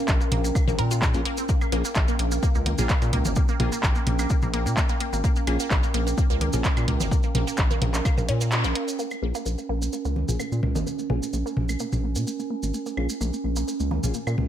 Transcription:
Already playing: C#4 A#4 G5
0.08 A#1 A#3, kick, clap, maracas
0.21 A#3, maracas
0.32 A#1 A#3, closed hi-hat, mid tom
0.44 A#3, maracas
0.55 A#3, kick, high woodblock, maracas
0.68 A#1 A#3, mid tom, high conga, maracas
0.79 A#2 A#4, closed hi-hat
0.91 F4, maracas
1.02 G#3, kick, clap, maracas
1.14 A#1 A#3 C#4 F4 G#4, closed hi-hat, maracas
1.25 A#3, closed hi-hat
1.37 C4, maracas
1.49 A#3, kick, maracas
1.61 A#3, high woodblock, maracas
1.72 A#1 A#3 C#4 F4 G#4, closed hi-hat
1.85 A#3, maracas
1.95 A#1 A#3, kick, clap, maracas
2.08 A#3, maracas
2.19 A#1 A#3, closed hi-hat
2.31 A#3, maracas
2.43 A#3, kick, maracas
2.55 C#2 A#3, maracas
2.66 A#3, closed hi-hat, high conga
2.78 A#1 A#3 C#4 F4 G#4, mid tom, maracas
2.89 A#3, kick, clap, high woodblock, maracas
3.02 A#2 A#3, closed hi-hat, maracas
3.13 C#2 A#3, closed hi-hat, mid tom
3.25 G#1 A#3, high conga, maracas
3.36 A#3, kick, maracas
3.48 A#3, maracas
3.60 A#1 A#3 C#4 F4 G#4, closed hi-hat, mid tom
3.72 A#3, maracas
3.83 A#1 A#3, kick, clap, maracas
3.95 A#3, maracas
4.07 A#1 A#3, closed hi-hat, mid tom
4.19 A#3, high woodblock, maracas
4.30 A#3, kick, maracas
4.42 A#1 A#3, mid tom, maracas
4.54 A#3, closed hi-hat
4.66 A#2 A#3, maracas
4.77 A#3, kick, clap, maracas
4.89 A#3, closed hi-hat, maracas
5.00 A#3, closed hi-hat
5.13 G#1 A#3, maracas
5.24 A#3, kick, maracas
5.36 A#3, maracas
5.47 A#1 A#3 C#4 F4 G#4, closed hi-hat, high woodblock
5.60 A#3, maracas
5.71 A#1 A#3, kick, clap, maracas
5.83 A#3, maracas
5.94 A#1 A#3, closed hi-hat
6.07 A#3, maracas
6.18 A#3, kick, maracas
6.30 C#2 A#3, maracas
6.41 A#3, closed hi-hat, high conga
6.53 A#1 A#3 C#4 F4 G#4, mid tom, maracas
6.64 A#3, kick, clap, maracas
6.77 A#2 A#3, closed hi-hat, high woodblock, maracas
6.88 C#2 A#3, closed hi-hat, mid tom
7.00 G#1 A#3, high conga, maracas
7.11 A#3, kick, maracas
7.23 A#3, maracas
7.35 A#1 A#3, closed hi-hat, mid tom
7.47 A#3, maracas
7.57 A#1 A#3, kick, clap, maracas
7.71 A#3, high conga, maracas
7.82 A#1 A#3, closed hi-hat, mid tom
7.94 A#3, clap, maracas
8.05 A#3, kick, high woodblock, maracas
8.18 A#1 A#3, mid tom, maracas
8.29 A#2 C#4, closed hi-hat
8.41 A#3, maracas
8.52 clap, maracas
8.64 A#1 A#3, closed hi-hat, maracas
8.75 A#3, closed hi-hat
8.88 maracas
8.99 A#3 C#4, maracas
9.08 A#3 A#4, high woodblock, maracas
9.22 A#1 A#3 C#4 F4 G#4 G#5
9.35 A#3, maracas
9.46 A#1 A#3, maracas
9.58 A#3, maracas
9.69 A#1 A#3
9.82 A#3, maracas
9.93 A#3, maracas
10.05 C#2 A#3, maracas
10.16 A#3, high conga
10.29 A#1 A#3 C#4 F4 G#4, mid tom, maracas
10.40 A#3, high woodblock, maracas
10.52 A#2 A#3, maracas
10.63 C#2 A#3, mid tom
10.75 G#1 A#3, high conga, maracas
10.86 A#3, maracas
10.99 A#3, maracas
11.10 A#1 A#3 C#4 F4 G#4, mid tom
11.22 A#3, maracas
11.33 A#1 A#3, maracas
11.46 A#3, maracas
11.57 A#1 A#3, mid tom
11.69 A#3, high woodblock, maracas
11.79 A#3, maracas
11.92 A#1 A#3, mid tom, maracas
12.04 A#3
12.15 A#2 A#3, maracas
12.27 A#3, maracas
12.39 A#3, maracas
12.50 A#3
12.63 G#1 A#3, maracas
12.74 A#3, maracas
12.86 A#3, maracas
12.97 A#1 A#3 C#4 F4 G#4, high woodblock
13.09 A#3, maracas
13.21 A#1 A#3, maracas
13.33 A#3, maracas
13.44 A#1 A#3
13.56 A#3, maracas
13.68 A#3, maracas
13.80 C#2 A#3, maracas
13.91 A#3, high conga
14.04 A#1 A#3 C#4 F4 G#4, mid tom, maracas
14.14 A#3, maracas
14.27 A#2 A#3, high woodblock, maracas
14.38 C#2 A#3, mid tom

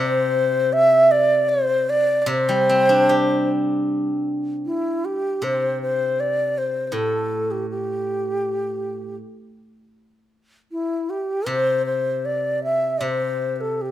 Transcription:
Already playing: C3 C5
0.73 E5
1.11 D5
1.49 C5
1.90 D5
2.22 D5
2.26 C3 C5
2.49 G3
2.69 C4
2.89 D4
3.09 G4
4.66 E4
5.05 G4
5.42 C3 C5
5.82 C5
6.20 D5
6.58 C5
6.87 C5
6.92 A2 A4
7.51 G4
7.70 G4
10.72 E4
11.10 G4
11.46 C3 C5
11.86 C5
12.25 D5
12.64 E5
13.01 C3 C5
13.56 C5
13.61 A4
13.82 G4

